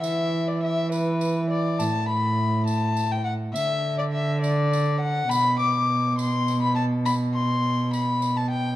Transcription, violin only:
\new Staff \with { instrumentName = "Violin" } { \time 6/8 \key d \mixolydian \tempo 4. = 68 e''8. d''16 e''8 b'4 d''8 | a''8 b''4 a''8. g''16 fis''8 | e''8. d''16 e''8 d''4 fis''8 | b''8 d'''4 c'''8. b''16 a''8 |
b''8 c'''4 b''8. a''16 g''8 | }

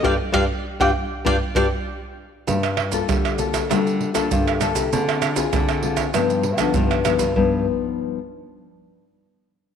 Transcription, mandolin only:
\new Staff \with { instrumentName = "Mandolin" } { \time 4/4 \key d \phrygian \tempo 4 = 98 <d'' f'' g''>16 r16 <d'' f'' g''>16 r8 <d'' f'' g''>16 r8 <d'' f'' g''>16 r16 <d'' f'' g''>16 r4 r16 | r1 | r1 | r1 | }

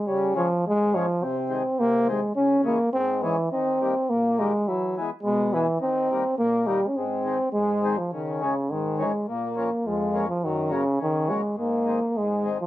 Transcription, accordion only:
\new Staff \with { instrumentName = "Accordion" } { \clef bass \time 2/4 \key aes \major \tempo 4 = 104 << { r8 <f aes des'>8 r8 <f aes des'>8 | r8 <ees aes c'>8 r8 <ees aes c'>8 | r8 <fes aes des'>8 r8 <fes aes des'>8 | r8 <ees g bes>8 r8 <ees g bes>8 |
r8 <e gis b>8 r8 <e gis b>8 | r8 <ees g bes>8 r8 <ees g bes>8 | r8 <ees aes c'>8 r8 <ees aes c'>8 | \key des \major r8 <ees aes des'>8 r8 <ees aes des'>8 |
r8 <f bes des'>8 r8 <f bes des'>8 | r8 <ges bes des'>8 r8 <ges bes des'>8 | r8 <ees aes c'>8 r8 <ees aes c'>8 | } \\ { des4 aes,4 | c4 c4 | des4 aes,4 | ees4 bes,4 |
e4 b,4 | ees4 bes,4 | aes,4 aes,4 | des4 aes,4 |
bes,4 f,4 | ges,4 des4 | aes,4 aes,4 | } >> }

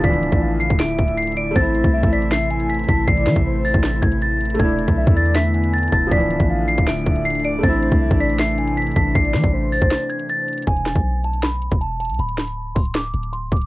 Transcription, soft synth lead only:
\new Staff \with { instrumentName = "Soft synth lead" } { \time 4/4 \key a \minor \tempo 4 = 158 d''4 f''4 e''4. d''8 | c''4 e''8 d''8 e''8 gis''4 a''8 | d''4 c''2 r4 | d''4 e''8 d''8 e''8 gis''4 a''8 |
d''4 f''4 e''4. d''8 | c''4 e''8 d''8 e''8 gis''4 a''8 | d''4 c''2 r4 | r1 |
r1 | }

